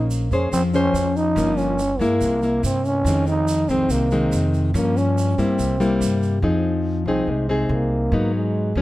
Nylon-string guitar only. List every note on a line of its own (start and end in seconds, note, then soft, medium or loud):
0.00 0.51 A#3 medium
0.00 0.28 C#4 medium
0.00 0.28 G#4 medium
0.00 0.29 C5 medium
0.32 0.71 C#4 medium
0.32 0.71 G#4 medium
0.32 0.71 C5 medium
0.53 1.35 F3 soft
0.74 1.34 C#4 medium
0.74 1.34 G#4 medium
0.74 1.34 C5 medium
1.37 2.19 G2 soft
1.37 1.79 F3 medium
1.37 1.79 A#3 medium
1.37 1.79 C#4 medium
2.01 2.39 G#3 medium
2.01 2.39 A#3 medium
2.01 2.40 E4 medium
2.23 3.04 C3 soft
2.43 3.03 A#3 medium
2.43 3.03 E4 medium
3.07 3.89 F2 medium
3.07 3.66 D#3 medium
3.07 3.67 G#3 soft
3.07 3.67 C4 medium
3.70 4.09 D#3 medium
3.70 4.08 G#3 medium
3.70 4.09 C4 medium
3.91 4.73 C3 medium
4.12 4.71 D#3 medium
4.12 4.72 G#3 medium
4.12 4.72 C4 medium
4.75 5.57 G2 medium
4.75 5.34 F3 medium
4.75 5.35 A#3 medium
4.75 5.35 C#4 medium
5.38 5.77 G3 medium
5.38 5.77 A#3 medium
5.38 5.77 E4 medium
5.59 6.41 C3 soft
5.80 6.40 G3 medium
5.80 6.40 A#3 medium
5.80 6.40 E4 medium
6.43 7.25 F3 soft
6.43 7.03 C4 medium
6.43 7.03 D#4 medium
6.43 7.03 G#4 medium
7.07 7.46 C4 medium
7.07 7.46 D#4 medium
7.07 7.46 G#4 medium
7.28 8.10 C3 medium
7.49 8.09 C4 medium
7.49 8.09 D#4 medium
7.49 8.10 G#4 medium
8.12 8.82 G#2 medium
8.12 8.73 F#3 medium
8.12 8.73 B3 medium
8.12 8.73 D#4 medium
8.77 8.82 F3 medium
8.77 8.82 B3 medium
8.77 8.82 C#4 medium